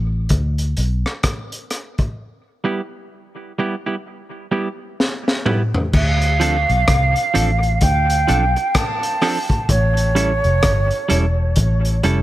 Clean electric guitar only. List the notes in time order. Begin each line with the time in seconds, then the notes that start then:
2.64 G3 B3 E4 G4
3.59 G3 B3 E4 G4
3.86 G3 B3 E4 G4
4.51 G3 B3 E4 G4
5.46 G3 B3 E4 G4
6.40 F3 C4 D4 A4
7.34 F3 C4 D4 A4
8.28 F3 C4 D4 A4
8.57 muted clean electric guitar stroke
9.22 F3 C4 D4 A4
9.49 muted clean electric guitar stroke
10.15 G3 C#4 E4 A4
11.09 G3 C#4 E4 A4
12.04 G3 C#4 E4 A4